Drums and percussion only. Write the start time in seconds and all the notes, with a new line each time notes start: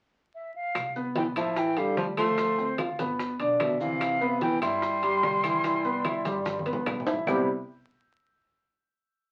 0.75 high bongo, high conga, high timbale, claves, maracas
0.95 high conga, maracas
1.16 high bongo, high conga, high timbale, low timbale, maracas
1.36 high conga, high timbale, claves, maracas
1.56 high bongo, high conga, maracas
1.77 high conga, high timbale, maracas
1.97 high bongo, low bongo, high conga, low timbale, maracas
2.17 high conga, high timbale, claves, maracas
2.38 high bongo, high timbale, maracas
2.58 high bongo, high conga, maracas
2.78 high bongo, high conga, high timbale, low timbale, claves, maracas
2.99 high bongo, high conga, high timbale, maracas
3.19 high bongo, high conga, maracas
3.40 high conga, high timbale, maracas
3.60 high bongo, low bongo, high conga, high timbale, low timbale, claves, maracas
3.80 high bongo, high conga, maracas
4.01 high bongo, high conga, high timbale, claves, maracas
4.21 high conga, maracas
4.41 high bongo, high conga, high timbale, low timbale, maracas
4.62 high conga, high timbale, claves, maracas
4.82 high bongo, high conga, maracas
5.03 high conga, high timbale, maracas
5.23 high bongo, low bongo, high conga, low timbale, maracas
5.43 high conga, high timbale, claves, maracas
5.64 high bongo, high conga, high timbale, maracas
5.84 high bongo, high conga, maracas
6.05 high bongo, high conga, high timbale, low timbale, claves, maracas
6.25 high bongo, high conga, high timbale, maracas
6.46 high bongo, high conga, maracas
6.59 high conga
6.66 high timbale, maracas
6.73 low conga
6.86 high bongo, low bongo, low conga, high timbale, low timbale, claves, maracas
7.00 low conga
7.07 high bongo, high timbale, maracas
7.13 low conga
7.27 low bongo, low conga, low timbale, claves, maracas